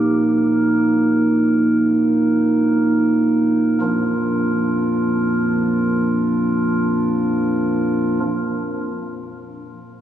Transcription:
Already playing: A#1 A#2 A#3 D#4 A#4
3.81 A#1 F2 F3 A#3 D4 F4 A#4

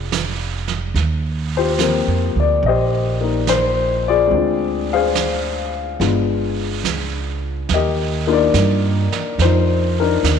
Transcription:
Already playing: F1 G#3 C4 D4 F4 G#4 D5 G5
0.12 snare, hi-hat pedal
0.68 snare
0.94 D#2, brush sweep, snare
1.57 F4 G4 C5
1.79 F3 A#3 C4 F4, snare, hi-hat pedal
2.07 F2
2.35 D2
2.40 D5
2.63 A#1 D#5, brush sweep
2.68 G4 C5
3.21 A#3 D#4
3.47 C5, snare, hi-hat pedal
4.08 F4 G#4 D5
4.27 D2 G#3 C4
4.32 D4, brush sweep
4.38 F4
4.93 G#4 C5 F5
5.15 snare, hi-hat pedal
6.00 G1 G#3 B3 D4 F4, brush sweep, snare
6.84 C#2, snare, hi-hat pedal
7.69 D#2, brush sweep, snare
7.74 G4 A#4 D#5
8.27 A#3 D4 D#4 F4
8.32 F4 A#4 D5
8.54 G2, snare, hi-hat pedal
9.12 muted upright bass stroke, snare
9.39 F2 C5, brush sweep, snare
9.44 D#4 F4
10.00 D4 D#4 A#4
10.23 D#2, snare, hi-hat pedal

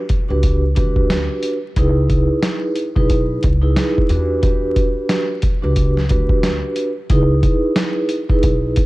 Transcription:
0.09 kick, closed hi-hat
0.29 C#2 D4 F#4 G4 B4
0.43 kick, closed hi-hat
0.75 D2 D4 F#4 G4 B4, kick, closed hi-hat
0.96 kick
1.10 snare, closed hi-hat
1.43 closed hi-hat
1.76 C#2 D#4 E4 G#4 B4, kick, closed hi-hat
2.10 kick, closed hi-hat
2.43 snare, closed hi-hat
2.76 closed hi-hat
2.96 B1 D#4 E4 G#4 B4, kick
3.10 kick, closed hi-hat
3.43 C#2, kick, closed hi-hat
3.62 D#4 E4 G#4 B4
3.76 snare, closed hi-hat
3.98 kick
4.09 E2 D4 F#4 G4 B4, closed hi-hat
4.42 D4 F#4 G4 B4, kick, closed hi-hat
4.76 kick, closed hi-hat
5.09 snare, closed hi-hat
5.42 kick, closed hi-hat
5.62 C#2 D4 F#4 G4 B4
5.76 kick, closed hi-hat
5.97 snare
6.09 D2 D4 F#4 G4 B4, kick, closed hi-hat
6.29 kick
6.43 snare, closed hi-hat
6.76 closed hi-hat
7.10 C#2 D#4 E4 G#4 B4, kick, closed hi-hat
7.43 kick, closed hi-hat
7.76 snare, closed hi-hat
8.09 closed hi-hat
8.29 D#4 E4 G#4 B4, kick
8.43 B1, kick, closed hi-hat
8.76 kick, closed hi-hat

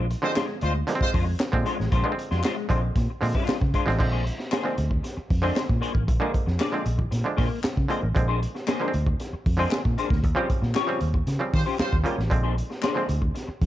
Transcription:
Already playing: A#1
0.10 muted clean electric guitar stroke, closed hi-hat
0.22 D3 F3 G#3 C4 D4 F4 C5, snare
0.35 G#3 D4 F4 C5, snare, clap, closed hi-hat
0.48 muted clean electric guitar stroke
0.61 D2 G#3 D4 F4 C5, closed hi-hat
0.75 muted clean electric guitar stroke
0.87 D3 F3 G#3 A#3, muted clean electric guitar stroke, snare, closed hi-hat
0.95 C4
1.01 G#3 F4 C5, muted fingered electric bass stroke, kick
1.13 F2 G#3 D4 F4 C5, kick, open hi-hat
1.26 muted clean electric guitar stroke
1.40 snare, clap, closed hi-hat
1.52 A#2 D3 F3 G#3 C4, muted clean electric guitar stroke, kick
1.65 G#3 D4 F4 C5, closed hi-hat
1.79 A1, muted clean electric guitar stroke, snare
1.91 A#1 G#3 D4 F4 C5, kick, closed hi-hat
2.04 D3 F3 G#3 B3
2.12 C4
2.18 muted clean electric guitar stroke, closed hi-hat
2.31 F2 G#3 D4 F4 C5, snare
2.44 G#3 D4 F4 C5, snare, clap, closed hi-hat
2.58 muted clean electric guitar stroke
2.69 A#1 D3 F3 G#3 C4 D4 F4 C5, kick, closed hi-hat
2.84 muted clean electric guitar stroke
2.96 A#2, muted clean electric guitar stroke, kick, snare, closed hi-hat
3.10 muted clean electric guitar stroke
3.21 A#2 D3 F3 G#3 C4, open hi-hat
3.35 G#3 D4 F4 C5, kick
3.48 muted fingered electric bass stroke, snare, clap, closed hi-hat
3.61 C#3, muted clean electric guitar stroke, kick
3.74 G#3 D4 F4 C5, kick, closed hi-hat
3.86 A1 D3 F3 G#3 C4, muted clean electric guitar stroke, snare
3.99 A#1 D3 F3 G#3 C4, muted clean electric guitar stroke, kick, crash
4.12 A#3 D4 G#4 C5
4.25 muted clean electric guitar stroke, closed hi-hat
4.38 muted clean electric guitar stroke, snare
4.51 A#3 D4 G#4 C5, snare, clap, closed hi-hat
4.64 D3 F3 G#3 C4
4.77 D2, muted clean electric guitar stroke, closed hi-hat
4.90 muted clean electric guitar stroke, kick
5.03 muted clean electric guitar stroke, snare, closed hi-hat
5.17 muted clean electric guitar stroke, muted fingered electric bass stroke
5.30 F2, kick, open hi-hat
5.42 D3 F3 G#3 A#3 C4 D4 G#4 C5
5.56 snare, clap, closed hi-hat
5.69 A#2, muted clean electric guitar stroke, kick
5.81 A#3 D4 G#4 C5, closed hi-hat
5.94 A1, muted clean electric guitar stroke, kick
6.07 A#1, muted clean electric guitar stroke, kick, closed hi-hat
6.20 D3 F3 G#3 A#3 D4 G#4 C5
6.33 muted clean electric guitar stroke, kick, closed hi-hat
6.46 F2, muted clean electric guitar stroke, snare
6.59 A#3 D4 G#4 D5, snare, clap, closed hi-hat
6.72 D3 F3 G#3 C4
6.86 A#1, muted clean electric guitar stroke, closed hi-hat
6.98 muted clean electric guitar stroke, kick
7.11 A#2, muted clean electric guitar stroke, snare, closed hi-hat
7.24 D3 F3 G#3 D4, muted clean electric guitar stroke
7.37 A#2 A#3 D4 G#4 C5, kick, open hi-hat
7.50 muted clean electric guitar stroke
7.63 muted clean electric guitar stroke, muted fingered electric bass stroke, snare, clap, closed hi-hat
7.77 C#3, kick
7.88 D3 F3 G#3 A#3 C4 D4 G#4 C5, closed hi-hat
8.02 A1, muted clean electric guitar stroke
8.15 A#1 D3 F3 G#3 C4, muted clean electric guitar stroke, kick, closed hi-hat
8.28 A#3 D4 G#4 C5
8.43 closed hi-hat
8.55 muted clean electric guitar stroke, snare
8.67 A#3 D4 G#4 C5, snare, clap, closed hi-hat
8.80 D3 F3 G#3 A#3
8.88 C4
8.94 D2, muted clean electric guitar stroke, closed hi-hat
9.06 muted clean electric guitar stroke, kick
9.20 muted clean electric guitar stroke, snare, closed hi-hat
9.33 muted fingered electric bass stroke, muted clean electric guitar stroke
9.46 F2, kick, open hi-hat
9.57 D3 F3 G#3 A#3 C4 D4 G#4 C5
9.71 snare, clap, closed hi-hat
9.85 A#2, muted clean electric guitar stroke, kick
9.98 A#3 D4 G#4 C5, closed hi-hat
10.10 D2, muted clean electric guitar stroke, kick, snare
10.24 D#2, muted clean electric guitar stroke, kick, closed hi-hat
10.35 C#3 F3 G3 C4 C#4 F4 G4 C5
10.50 muted clean electric guitar stroke, kick, closed hi-hat
10.62 A#2, muted clean electric guitar stroke, snare
10.75 C#4 F4 G4 C#5, snare, clap, closed hi-hat
10.87 C#3 F3 G3 C4
11.01 D#2, muted clean electric guitar stroke, closed hi-hat
11.14 muted clean electric guitar stroke, kick
11.27 C#3, muted clean electric guitar stroke, snare, closed hi-hat
11.39 C#3 F3 G3 C4, muted clean electric guitar stroke
11.53 D#3 G3 F4 C5, kick, open hi-hat
11.66 C#4 F4 G4 C5
11.79 G3 F4 C5, muted clean electric guitar stroke, muted fingered electric bass stroke, snare, clap, closed hi-hat
11.93 D#2, kick
12.04 C#3 F3 G3 A#3 C#4 F4 G4 C5, closed hi-hat
12.17 A1, muted clean electric guitar stroke, snare
12.30 A#1 D3 F3 G#3 C4, muted clean electric guitar stroke, kick, closed hi-hat
12.43 A#3 D4 G#4 C5
12.57 muted clean electric guitar stroke, closed hi-hat
12.70 muted clean electric guitar stroke, snare
12.82 A#3 D4 G#4 C5, snare, clap, closed hi-hat
12.95 D3 F3 G#3 C4
13.09 D2, muted clean electric guitar stroke, closed hi-hat
13.22 muted clean electric guitar stroke, kick
13.34 muted clean electric guitar stroke, snare, closed hi-hat
13.47 muted clean electric guitar stroke, muted fingered electric bass stroke
13.61 F2, kick, open hi-hat

